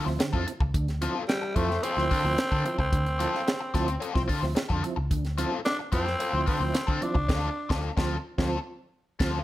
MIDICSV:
0, 0, Header, 1, 7, 480
1, 0, Start_track
1, 0, Key_signature, -1, "minor"
1, 0, Tempo, 545951
1, 651, Time_signature, 4, 2, 24, 8
1, 8299, End_track
2, 0, Start_track
2, 0, Title_t, "Overdriven electric guitar"
2, 0, Program_c, 0, 29
2, 288, Note_on_c, 0, 69, 73
2, 295, Note_on_c, 0, 65, 63
2, 300, Note_on_c, 0, 60, 58
2, 399, Note_off_c, 0, 60, 0
2, 402, Note_off_c, 0, 65, 0
2, 406, Note_off_c, 0, 69, 0
2, 894, Note_on_c, 0, 60, 79
2, 897, Note_on_c, 0, 65, 86
2, 904, Note_on_c, 0, 69, 78
2, 1073, Note_off_c, 0, 60, 0
2, 1074, Note_off_c, 0, 65, 0
2, 1078, Note_off_c, 0, 69, 0
2, 1369, Note_on_c, 0, 60, 92
2, 1377, Note_on_c, 0, 65, 98
2, 1380, Note_on_c, 0, 69, 92
2, 1482, Note_off_c, 0, 69, 0
2, 1492, Note_off_c, 0, 65, 0
2, 1550, Note_off_c, 0, 60, 0
2, 1610, Note_on_c, 0, 60, 80
2, 1617, Note_on_c, 0, 65, 73
2, 1623, Note_on_c, 0, 69, 95
2, 1718, Note_off_c, 0, 69, 0
2, 1729, Note_off_c, 0, 65, 0
2, 1791, Note_off_c, 0, 60, 0
2, 1849, Note_on_c, 0, 60, 63
2, 1857, Note_on_c, 0, 65, 71
2, 1864, Note_on_c, 0, 69, 72
2, 1957, Note_off_c, 0, 69, 0
2, 1968, Note_off_c, 0, 65, 0
2, 1991, Note_off_c, 0, 60, 0
2, 2212, Note_on_c, 0, 69, 89
2, 2218, Note_on_c, 0, 65, 68
2, 2223, Note_on_c, 0, 60, 69
2, 2318, Note_off_c, 0, 60, 0
2, 2323, Note_off_c, 0, 65, 0
2, 2325, Note_off_c, 0, 69, 0
2, 2805, Note_on_c, 0, 60, 77
2, 2812, Note_on_c, 0, 65, 67
2, 2817, Note_on_c, 0, 69, 71
2, 2988, Note_off_c, 0, 60, 0
2, 2991, Note_off_c, 0, 65, 0
2, 2994, Note_off_c, 0, 69, 0
2, 3286, Note_on_c, 0, 60, 73
2, 3293, Note_on_c, 0, 65, 80
2, 3298, Note_on_c, 0, 69, 98
2, 3393, Note_off_c, 0, 69, 0
2, 3404, Note_off_c, 0, 65, 0
2, 3469, Note_off_c, 0, 60, 0
2, 3518, Note_on_c, 0, 60, 98
2, 3526, Note_on_c, 0, 65, 90
2, 3531, Note_on_c, 0, 69, 114
2, 3628, Note_off_c, 0, 69, 0
2, 3639, Note_off_c, 0, 65, 0
2, 3705, Note_off_c, 0, 60, 0
2, 3759, Note_on_c, 0, 60, 70
2, 3767, Note_on_c, 0, 65, 69
2, 3772, Note_on_c, 0, 69, 76
2, 3872, Note_off_c, 0, 69, 0
2, 3884, Note_off_c, 0, 65, 0
2, 3906, Note_off_c, 0, 60, 0
2, 4121, Note_on_c, 0, 69, 79
2, 4126, Note_on_c, 0, 65, 80
2, 4135, Note_on_c, 0, 60, 63
2, 4237, Note_off_c, 0, 60, 0
2, 4240, Note_off_c, 0, 65, 0
2, 4244, Note_off_c, 0, 69, 0
2, 4726, Note_on_c, 0, 60, 71
2, 4736, Note_on_c, 0, 65, 78
2, 4740, Note_on_c, 0, 69, 77
2, 4909, Note_off_c, 0, 60, 0
2, 4913, Note_off_c, 0, 65, 0
2, 4915, Note_off_c, 0, 69, 0
2, 5203, Note_on_c, 0, 60, 76
2, 5212, Note_on_c, 0, 65, 84
2, 5213, Note_on_c, 0, 69, 87
2, 5320, Note_off_c, 0, 69, 0
2, 5330, Note_off_c, 0, 65, 0
2, 5387, Note_off_c, 0, 60, 0
2, 5447, Note_on_c, 0, 60, 86
2, 5452, Note_on_c, 0, 65, 89
2, 5461, Note_on_c, 0, 69, 90
2, 5553, Note_off_c, 0, 69, 0
2, 5563, Note_off_c, 0, 65, 0
2, 5629, Note_off_c, 0, 60, 0
2, 5681, Note_on_c, 0, 60, 60
2, 5687, Note_on_c, 0, 65, 70
2, 5695, Note_on_c, 0, 69, 68
2, 5788, Note_off_c, 0, 69, 0
2, 5797, Note_off_c, 0, 65, 0
2, 5827, Note_off_c, 0, 60, 0
2, 6039, Note_on_c, 0, 69, 91
2, 6047, Note_on_c, 0, 65, 73
2, 6052, Note_on_c, 0, 60, 70
2, 6149, Note_off_c, 0, 60, 0
2, 6156, Note_off_c, 0, 65, 0
2, 6158, Note_off_c, 0, 69, 0
2, 6405, Note_on_c, 0, 60, 100
2, 6414, Note_on_c, 0, 65, 99
2, 6416, Note_on_c, 0, 69, 98
2, 6570, Note_off_c, 0, 60, 0
2, 6576, Note_off_c, 0, 65, 0
2, 6577, Note_off_c, 0, 69, 0
2, 6763, Note_on_c, 0, 60, 114
2, 6771, Note_on_c, 0, 65, 97
2, 6775, Note_on_c, 0, 69, 109
2, 6929, Note_off_c, 0, 60, 0
2, 6934, Note_off_c, 0, 65, 0
2, 6936, Note_off_c, 0, 69, 0
2, 7004, Note_on_c, 0, 60, 98
2, 7009, Note_on_c, 0, 65, 87
2, 7014, Note_on_c, 0, 69, 91
2, 7170, Note_off_c, 0, 60, 0
2, 7173, Note_off_c, 0, 65, 0
2, 7176, Note_off_c, 0, 69, 0
2, 7371, Note_on_c, 0, 60, 96
2, 7376, Note_on_c, 0, 65, 95
2, 7384, Note_on_c, 0, 69, 106
2, 7534, Note_off_c, 0, 60, 0
2, 7537, Note_off_c, 0, 65, 0
2, 7541, Note_off_c, 0, 69, 0
2, 8083, Note_on_c, 0, 69, 97
2, 8088, Note_on_c, 0, 65, 108
2, 8094, Note_on_c, 0, 60, 93
2, 8250, Note_off_c, 0, 69, 0
2, 8252, Note_off_c, 0, 65, 0
2, 8256, Note_off_c, 0, 60, 0
2, 8299, End_track
3, 0, Start_track
3, 0, Title_t, "Tenor saxophone"
3, 0, Program_c, 1, 66
3, 1129, Note_on_c, 1, 55, 101
3, 1366, Note_on_c, 1, 57, 103
3, 1379, Note_off_c, 1, 55, 0
3, 1609, Note_on_c, 1, 60, 108
3, 1622, Note_off_c, 1, 57, 0
3, 2450, Note_off_c, 1, 60, 0
3, 2456, Note_on_c, 1, 60, 96
3, 3858, Note_off_c, 1, 60, 0
3, 4970, Note_on_c, 1, 62, 114
3, 5078, Note_off_c, 1, 62, 0
3, 5213, Note_on_c, 1, 60, 109
3, 5658, Note_off_c, 1, 60, 0
3, 5694, Note_on_c, 1, 60, 95
3, 6178, Note_on_c, 1, 62, 98
3, 6191, Note_off_c, 1, 60, 0
3, 6894, Note_off_c, 1, 62, 0
3, 8299, End_track
4, 0, Start_track
4, 0, Title_t, "Tonewheel organ"
4, 0, Program_c, 2, 16
4, 51, Note_on_c, 2, 53, 64
4, 54, Note_on_c, 2, 60, 56
4, 57, Note_on_c, 2, 64, 78
4, 173, Note_off_c, 2, 53, 0
4, 175, Note_off_c, 2, 60, 0
4, 176, Note_off_c, 2, 64, 0
4, 176, Note_on_c, 2, 50, 54
4, 294, Note_on_c, 2, 53, 84
4, 296, Note_off_c, 2, 50, 0
4, 296, Note_on_c, 2, 60, 70
4, 298, Note_on_c, 2, 64, 90
4, 406, Note_off_c, 2, 64, 0
4, 407, Note_off_c, 2, 60, 0
4, 414, Note_off_c, 2, 53, 0
4, 416, Note_on_c, 2, 64, 43
4, 417, Note_on_c, 2, 60, 37
4, 462, Note_off_c, 2, 60, 0
4, 462, Note_off_c, 2, 64, 0
4, 653, Note_on_c, 2, 50, 62
4, 774, Note_off_c, 2, 50, 0
4, 891, Note_on_c, 2, 53, 82
4, 894, Note_on_c, 2, 60, 73
4, 897, Note_on_c, 2, 64, 99
4, 1001, Note_off_c, 2, 60, 0
4, 1001, Note_off_c, 2, 64, 0
4, 1011, Note_on_c, 2, 64, 46
4, 1012, Note_on_c, 2, 60, 41
4, 1013, Note_off_c, 2, 53, 0
4, 1059, Note_off_c, 2, 60, 0
4, 1059, Note_off_c, 2, 64, 0
4, 1369, Note_on_c, 2, 53, 85
4, 1372, Note_on_c, 2, 60, 76
4, 1374, Note_on_c, 2, 64, 103
4, 1492, Note_off_c, 2, 53, 0
4, 1493, Note_off_c, 2, 60, 0
4, 1495, Note_off_c, 2, 64, 0
4, 1730, Note_on_c, 2, 53, 76
4, 1732, Note_on_c, 2, 60, 62
4, 1734, Note_on_c, 2, 64, 83
4, 1852, Note_off_c, 2, 53, 0
4, 1853, Note_off_c, 2, 60, 0
4, 1855, Note_off_c, 2, 64, 0
4, 1856, Note_on_c, 2, 50, 58
4, 1973, Note_on_c, 2, 53, 66
4, 1975, Note_off_c, 2, 50, 0
4, 1975, Note_on_c, 2, 60, 53
4, 1979, Note_on_c, 2, 64, 74
4, 2083, Note_off_c, 2, 60, 0
4, 2085, Note_off_c, 2, 64, 0
4, 2093, Note_on_c, 2, 60, 36
4, 2094, Note_off_c, 2, 53, 0
4, 2095, Note_on_c, 2, 64, 43
4, 2140, Note_off_c, 2, 60, 0
4, 2141, Note_off_c, 2, 64, 0
4, 2213, Note_on_c, 2, 50, 60
4, 2331, Note_on_c, 2, 53, 71
4, 2334, Note_off_c, 2, 50, 0
4, 2334, Note_on_c, 2, 60, 65
4, 2337, Note_on_c, 2, 64, 73
4, 2453, Note_off_c, 2, 53, 0
4, 2454, Note_off_c, 2, 60, 0
4, 2456, Note_off_c, 2, 64, 0
4, 2573, Note_on_c, 2, 50, 67
4, 2694, Note_off_c, 2, 50, 0
4, 2811, Note_on_c, 2, 53, 86
4, 2814, Note_on_c, 2, 60, 75
4, 2817, Note_on_c, 2, 64, 87
4, 2925, Note_off_c, 2, 60, 0
4, 2925, Note_off_c, 2, 64, 0
4, 2933, Note_off_c, 2, 53, 0
4, 2935, Note_on_c, 2, 60, 39
4, 2935, Note_on_c, 2, 64, 50
4, 2981, Note_off_c, 2, 60, 0
4, 2981, Note_off_c, 2, 64, 0
4, 3290, Note_on_c, 2, 53, 90
4, 3292, Note_on_c, 2, 60, 73
4, 3296, Note_on_c, 2, 64, 89
4, 3412, Note_off_c, 2, 53, 0
4, 3413, Note_off_c, 2, 60, 0
4, 3415, Note_off_c, 2, 64, 0
4, 3652, Note_on_c, 2, 53, 66
4, 3654, Note_on_c, 2, 60, 66
4, 3657, Note_on_c, 2, 64, 86
4, 3773, Note_off_c, 2, 53, 0
4, 3774, Note_off_c, 2, 60, 0
4, 3774, Note_on_c, 2, 50, 61
4, 3776, Note_off_c, 2, 64, 0
4, 3893, Note_on_c, 2, 53, 71
4, 3894, Note_off_c, 2, 50, 0
4, 3896, Note_on_c, 2, 60, 64
4, 3899, Note_on_c, 2, 64, 77
4, 4004, Note_off_c, 2, 60, 0
4, 4005, Note_off_c, 2, 64, 0
4, 4014, Note_off_c, 2, 53, 0
4, 4015, Note_on_c, 2, 60, 41
4, 4015, Note_on_c, 2, 64, 46
4, 4060, Note_off_c, 2, 60, 0
4, 4061, Note_off_c, 2, 64, 0
4, 4137, Note_on_c, 2, 50, 66
4, 4251, Note_on_c, 2, 53, 80
4, 4255, Note_on_c, 2, 60, 70
4, 4256, Note_off_c, 2, 50, 0
4, 4257, Note_on_c, 2, 64, 82
4, 4373, Note_off_c, 2, 53, 0
4, 4375, Note_off_c, 2, 60, 0
4, 4376, Note_off_c, 2, 64, 0
4, 4493, Note_on_c, 2, 50, 69
4, 4614, Note_off_c, 2, 50, 0
4, 4731, Note_on_c, 2, 53, 88
4, 4733, Note_on_c, 2, 60, 70
4, 4737, Note_on_c, 2, 64, 95
4, 4843, Note_off_c, 2, 60, 0
4, 4843, Note_off_c, 2, 64, 0
4, 4853, Note_off_c, 2, 53, 0
4, 4853, Note_on_c, 2, 60, 42
4, 4853, Note_on_c, 2, 64, 47
4, 4900, Note_off_c, 2, 60, 0
4, 4900, Note_off_c, 2, 64, 0
4, 5213, Note_on_c, 2, 53, 87
4, 5214, Note_on_c, 2, 60, 80
4, 5217, Note_on_c, 2, 64, 97
4, 5334, Note_off_c, 2, 53, 0
4, 5334, Note_off_c, 2, 60, 0
4, 5336, Note_off_c, 2, 64, 0
4, 5571, Note_on_c, 2, 53, 72
4, 5574, Note_on_c, 2, 60, 60
4, 5576, Note_on_c, 2, 64, 79
4, 5693, Note_off_c, 2, 53, 0
4, 5694, Note_off_c, 2, 60, 0
4, 5695, Note_off_c, 2, 64, 0
4, 5696, Note_on_c, 2, 50, 57
4, 5811, Note_on_c, 2, 53, 72
4, 5813, Note_on_c, 2, 60, 62
4, 5815, Note_off_c, 2, 50, 0
4, 5815, Note_on_c, 2, 64, 71
4, 5923, Note_off_c, 2, 64, 0
4, 5924, Note_off_c, 2, 60, 0
4, 5933, Note_off_c, 2, 53, 0
4, 5934, Note_on_c, 2, 60, 39
4, 5934, Note_on_c, 2, 64, 45
4, 5980, Note_off_c, 2, 60, 0
4, 5980, Note_off_c, 2, 64, 0
4, 6053, Note_on_c, 2, 50, 68
4, 6173, Note_on_c, 2, 53, 67
4, 6174, Note_off_c, 2, 50, 0
4, 6176, Note_on_c, 2, 60, 63
4, 6179, Note_on_c, 2, 64, 81
4, 6294, Note_off_c, 2, 53, 0
4, 6295, Note_off_c, 2, 60, 0
4, 6297, Note_off_c, 2, 64, 0
4, 7010, Note_on_c, 2, 53, 97
4, 7012, Note_on_c, 2, 60, 96
4, 7173, Note_off_c, 2, 53, 0
4, 7175, Note_off_c, 2, 60, 0
4, 7368, Note_on_c, 2, 53, 95
4, 7371, Note_on_c, 2, 60, 97
4, 7532, Note_off_c, 2, 53, 0
4, 7534, Note_off_c, 2, 60, 0
4, 8089, Note_on_c, 2, 53, 88
4, 8093, Note_on_c, 2, 60, 95
4, 8253, Note_off_c, 2, 53, 0
4, 8255, Note_off_c, 2, 60, 0
4, 8299, End_track
5, 0, Start_track
5, 0, Title_t, "Picked electric bass"
5, 0, Program_c, 3, 34
5, 57, Note_on_c, 3, 38, 83
5, 150, Note_off_c, 3, 38, 0
5, 295, Note_on_c, 3, 41, 88
5, 388, Note_off_c, 3, 41, 0
5, 533, Note_on_c, 3, 37, 78
5, 627, Note_off_c, 3, 37, 0
5, 653, Note_on_c, 3, 38, 104
5, 937, Note_off_c, 3, 38, 0
5, 1372, Note_on_c, 3, 41, 85
5, 1561, Note_off_c, 3, 41, 0
5, 1731, Note_on_c, 3, 38, 73
5, 1826, Note_off_c, 3, 38, 0
5, 1974, Note_on_c, 3, 38, 96
5, 2068, Note_off_c, 3, 38, 0
5, 2215, Note_on_c, 3, 50, 96
5, 2308, Note_off_c, 3, 50, 0
5, 2449, Note_on_c, 3, 37, 81
5, 2544, Note_off_c, 3, 37, 0
5, 2572, Note_on_c, 3, 38, 109
5, 2856, Note_off_c, 3, 38, 0
5, 3292, Note_on_c, 3, 38, 86
5, 3481, Note_off_c, 3, 38, 0
5, 3653, Note_on_c, 3, 36, 81
5, 3747, Note_off_c, 3, 36, 0
5, 3892, Note_on_c, 3, 38, 91
5, 3986, Note_off_c, 3, 38, 0
5, 4133, Note_on_c, 3, 41, 87
5, 4227, Note_off_c, 3, 41, 0
5, 4371, Note_on_c, 3, 37, 84
5, 4465, Note_off_c, 3, 37, 0
5, 4492, Note_on_c, 3, 38, 95
5, 4776, Note_off_c, 3, 38, 0
5, 5210, Note_on_c, 3, 41, 81
5, 5400, Note_off_c, 3, 41, 0
5, 5568, Note_on_c, 3, 38, 89
5, 5664, Note_off_c, 3, 38, 0
5, 5806, Note_on_c, 3, 38, 96
5, 5903, Note_off_c, 3, 38, 0
5, 6052, Note_on_c, 3, 50, 90
5, 6146, Note_off_c, 3, 50, 0
5, 6287, Note_on_c, 3, 37, 84
5, 6383, Note_off_c, 3, 37, 0
5, 6412, Note_on_c, 3, 38, 99
5, 6574, Note_off_c, 3, 38, 0
5, 6771, Note_on_c, 3, 38, 96
5, 6934, Note_off_c, 3, 38, 0
5, 7011, Note_on_c, 3, 38, 100
5, 7174, Note_off_c, 3, 38, 0
5, 7371, Note_on_c, 3, 38, 88
5, 7534, Note_off_c, 3, 38, 0
5, 8091, Note_on_c, 3, 38, 84
5, 8254, Note_off_c, 3, 38, 0
5, 8299, End_track
6, 0, Start_track
6, 0, Title_t, "Muted overdriven electric guitar strokes"
6, 47, Note_on_c, 9, 29, 53
6, 135, Note_off_c, 9, 29, 0
6, 167, Note_on_c, 9, 29, 44
6, 255, Note_off_c, 9, 29, 0
6, 409, Note_on_c, 9, 29, 35
6, 497, Note_off_c, 9, 29, 0
6, 531, Note_on_c, 9, 29, 50
6, 619, Note_off_c, 9, 29, 0
6, 1133, Note_on_c, 9, 29, 35
6, 1221, Note_off_c, 9, 29, 0
6, 1249, Note_on_c, 9, 29, 41
6, 1336, Note_off_c, 9, 29, 0
6, 1493, Note_on_c, 9, 29, 44
6, 1581, Note_off_c, 9, 29, 0
6, 1729, Note_on_c, 9, 29, 51
6, 1817, Note_off_c, 9, 29, 0
6, 1967, Note_on_c, 9, 29, 51
6, 2055, Note_off_c, 9, 29, 0
6, 2095, Note_on_c, 9, 29, 41
6, 2183, Note_off_c, 9, 29, 0
6, 2328, Note_on_c, 9, 29, 47
6, 2416, Note_off_c, 9, 29, 0
6, 2447, Note_on_c, 9, 29, 51
6, 2535, Note_off_c, 9, 29, 0
6, 3052, Note_on_c, 9, 29, 34
6, 3139, Note_off_c, 9, 29, 0
6, 3168, Note_on_c, 9, 29, 41
6, 3256, Note_off_c, 9, 29, 0
6, 3404, Note_on_c, 9, 29, 37
6, 3492, Note_off_c, 9, 29, 0
6, 3638, Note_on_c, 9, 29, 44
6, 3726, Note_off_c, 9, 29, 0
6, 3883, Note_on_c, 9, 29, 46
6, 3971, Note_off_c, 9, 29, 0
6, 4001, Note_on_c, 9, 29, 41
6, 4089, Note_off_c, 9, 29, 0
6, 4248, Note_on_c, 9, 29, 38
6, 4336, Note_off_c, 9, 29, 0
6, 4362, Note_on_c, 9, 29, 51
6, 4450, Note_off_c, 9, 29, 0
6, 4971, Note_on_c, 9, 29, 39
6, 5059, Note_off_c, 9, 29, 0
6, 5091, Note_on_c, 9, 29, 48
6, 5179, Note_off_c, 9, 29, 0
6, 5331, Note_on_c, 9, 29, 52
6, 5419, Note_off_c, 9, 29, 0
6, 5563, Note_on_c, 9, 29, 40
6, 5651, Note_off_c, 9, 29, 0
6, 5799, Note_on_c, 9, 29, 56
6, 5887, Note_off_c, 9, 29, 0
6, 5923, Note_on_c, 9, 29, 37
6, 6011, Note_off_c, 9, 29, 0
6, 6159, Note_on_c, 9, 29, 36
6, 6247, Note_off_c, 9, 29, 0
6, 6282, Note_on_c, 9, 29, 53
6, 6370, Note_off_c, 9, 29, 0
6, 8299, End_track
7, 0, Start_track
7, 0, Title_t, "Drums"
7, 59, Note_on_c, 9, 38, 32
7, 147, Note_off_c, 9, 38, 0
7, 176, Note_on_c, 9, 42, 95
7, 180, Note_on_c, 9, 38, 115
7, 264, Note_off_c, 9, 42, 0
7, 268, Note_off_c, 9, 38, 0
7, 294, Note_on_c, 9, 36, 86
7, 382, Note_off_c, 9, 36, 0
7, 420, Note_on_c, 9, 42, 65
7, 507, Note_off_c, 9, 42, 0
7, 531, Note_on_c, 9, 36, 97
7, 619, Note_off_c, 9, 36, 0
7, 654, Note_on_c, 9, 36, 102
7, 655, Note_on_c, 9, 42, 81
7, 742, Note_off_c, 9, 36, 0
7, 743, Note_off_c, 9, 42, 0
7, 777, Note_on_c, 9, 42, 35
7, 782, Note_on_c, 9, 38, 31
7, 865, Note_off_c, 9, 42, 0
7, 870, Note_off_c, 9, 38, 0
7, 894, Note_on_c, 9, 42, 95
7, 982, Note_off_c, 9, 42, 0
7, 1133, Note_on_c, 9, 42, 73
7, 1139, Note_on_c, 9, 38, 121
7, 1221, Note_off_c, 9, 42, 0
7, 1227, Note_off_c, 9, 38, 0
7, 1372, Note_on_c, 9, 36, 100
7, 1373, Note_on_c, 9, 42, 60
7, 1460, Note_off_c, 9, 36, 0
7, 1461, Note_off_c, 9, 42, 0
7, 1502, Note_on_c, 9, 38, 31
7, 1590, Note_off_c, 9, 38, 0
7, 1613, Note_on_c, 9, 42, 95
7, 1701, Note_off_c, 9, 42, 0
7, 1741, Note_on_c, 9, 38, 45
7, 1829, Note_off_c, 9, 38, 0
7, 1855, Note_on_c, 9, 46, 80
7, 1856, Note_on_c, 9, 36, 81
7, 1943, Note_off_c, 9, 46, 0
7, 1944, Note_off_c, 9, 36, 0
7, 2094, Note_on_c, 9, 42, 86
7, 2098, Note_on_c, 9, 38, 116
7, 2182, Note_off_c, 9, 42, 0
7, 2186, Note_off_c, 9, 38, 0
7, 2214, Note_on_c, 9, 36, 89
7, 2302, Note_off_c, 9, 36, 0
7, 2335, Note_on_c, 9, 42, 65
7, 2423, Note_off_c, 9, 42, 0
7, 2450, Note_on_c, 9, 36, 84
7, 2537, Note_off_c, 9, 36, 0
7, 2572, Note_on_c, 9, 36, 104
7, 2573, Note_on_c, 9, 42, 84
7, 2660, Note_off_c, 9, 36, 0
7, 2661, Note_off_c, 9, 42, 0
7, 2694, Note_on_c, 9, 42, 39
7, 2782, Note_off_c, 9, 42, 0
7, 2816, Note_on_c, 9, 42, 100
7, 2904, Note_off_c, 9, 42, 0
7, 2943, Note_on_c, 9, 38, 33
7, 3031, Note_off_c, 9, 38, 0
7, 3056, Note_on_c, 9, 42, 80
7, 3062, Note_on_c, 9, 38, 120
7, 3144, Note_off_c, 9, 42, 0
7, 3150, Note_off_c, 9, 38, 0
7, 3292, Note_on_c, 9, 36, 95
7, 3296, Note_on_c, 9, 42, 65
7, 3301, Note_on_c, 9, 38, 36
7, 3380, Note_off_c, 9, 36, 0
7, 3383, Note_off_c, 9, 42, 0
7, 3389, Note_off_c, 9, 38, 0
7, 3411, Note_on_c, 9, 42, 52
7, 3499, Note_off_c, 9, 42, 0
7, 3534, Note_on_c, 9, 42, 92
7, 3622, Note_off_c, 9, 42, 0
7, 3653, Note_on_c, 9, 36, 96
7, 3659, Note_on_c, 9, 38, 43
7, 3741, Note_off_c, 9, 36, 0
7, 3747, Note_off_c, 9, 38, 0
7, 3774, Note_on_c, 9, 46, 78
7, 3775, Note_on_c, 9, 36, 78
7, 3862, Note_off_c, 9, 46, 0
7, 3863, Note_off_c, 9, 36, 0
7, 3899, Note_on_c, 9, 38, 30
7, 3987, Note_off_c, 9, 38, 0
7, 4013, Note_on_c, 9, 42, 84
7, 4017, Note_on_c, 9, 38, 127
7, 4101, Note_off_c, 9, 42, 0
7, 4105, Note_off_c, 9, 38, 0
7, 4132, Note_on_c, 9, 36, 80
7, 4220, Note_off_c, 9, 36, 0
7, 4255, Note_on_c, 9, 42, 65
7, 4342, Note_off_c, 9, 42, 0
7, 4491, Note_on_c, 9, 36, 90
7, 4493, Note_on_c, 9, 42, 87
7, 4579, Note_off_c, 9, 36, 0
7, 4581, Note_off_c, 9, 42, 0
7, 4612, Note_on_c, 9, 42, 36
7, 4617, Note_on_c, 9, 38, 33
7, 4700, Note_off_c, 9, 42, 0
7, 4705, Note_off_c, 9, 38, 0
7, 4733, Note_on_c, 9, 42, 102
7, 4821, Note_off_c, 9, 42, 0
7, 4974, Note_on_c, 9, 42, 76
7, 4979, Note_on_c, 9, 38, 124
7, 5061, Note_off_c, 9, 42, 0
7, 5067, Note_off_c, 9, 38, 0
7, 5209, Note_on_c, 9, 36, 92
7, 5209, Note_on_c, 9, 42, 70
7, 5297, Note_off_c, 9, 36, 0
7, 5297, Note_off_c, 9, 42, 0
7, 5340, Note_on_c, 9, 38, 35
7, 5428, Note_off_c, 9, 38, 0
7, 5453, Note_on_c, 9, 42, 96
7, 5541, Note_off_c, 9, 42, 0
7, 5690, Note_on_c, 9, 46, 71
7, 5694, Note_on_c, 9, 36, 85
7, 5778, Note_off_c, 9, 46, 0
7, 5782, Note_off_c, 9, 36, 0
7, 5930, Note_on_c, 9, 42, 91
7, 5934, Note_on_c, 9, 38, 122
7, 6018, Note_off_c, 9, 42, 0
7, 6022, Note_off_c, 9, 38, 0
7, 6051, Note_on_c, 9, 36, 91
7, 6139, Note_off_c, 9, 36, 0
7, 6172, Note_on_c, 9, 42, 71
7, 6260, Note_off_c, 9, 42, 0
7, 6288, Note_on_c, 9, 36, 95
7, 6376, Note_off_c, 9, 36, 0
7, 6411, Note_on_c, 9, 36, 101
7, 6411, Note_on_c, 9, 49, 72
7, 6418, Note_on_c, 9, 38, 101
7, 6499, Note_off_c, 9, 36, 0
7, 6499, Note_off_c, 9, 49, 0
7, 6506, Note_off_c, 9, 38, 0
7, 6772, Note_on_c, 9, 36, 99
7, 6779, Note_on_c, 9, 38, 103
7, 6860, Note_off_c, 9, 36, 0
7, 6867, Note_off_c, 9, 38, 0
7, 7011, Note_on_c, 9, 36, 111
7, 7021, Note_on_c, 9, 38, 107
7, 7099, Note_off_c, 9, 36, 0
7, 7109, Note_off_c, 9, 38, 0
7, 7371, Note_on_c, 9, 36, 99
7, 7378, Note_on_c, 9, 38, 98
7, 7459, Note_off_c, 9, 36, 0
7, 7466, Note_off_c, 9, 38, 0
7, 8088, Note_on_c, 9, 49, 71
7, 8090, Note_on_c, 9, 36, 103
7, 8095, Note_on_c, 9, 38, 99
7, 8176, Note_off_c, 9, 49, 0
7, 8178, Note_off_c, 9, 36, 0
7, 8183, Note_off_c, 9, 38, 0
7, 8299, End_track
0, 0, End_of_file